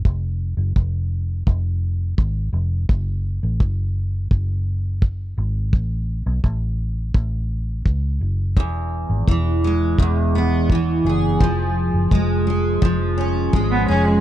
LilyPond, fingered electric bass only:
\new Staff \with { instrumentName = "Fingered electric bass" } { \clef bass \time 4/4 \key e \mixolydian \tempo 4 = 85 f,,8. fis,,16 f,,4 f,,4 aes,,8 f,,8 | fis,,8. a,,16 fis,,4 fis,,4. gis,,8 | a,,8. b,,16 a,,4 a,,4 cis,8 fis,,8 | e,,8. gis,,16 e,,4 e,,4. fis,,8 |
eis,,8. fis,,16 eis,,4 eis,,4 gis,,8 eis,,8 | }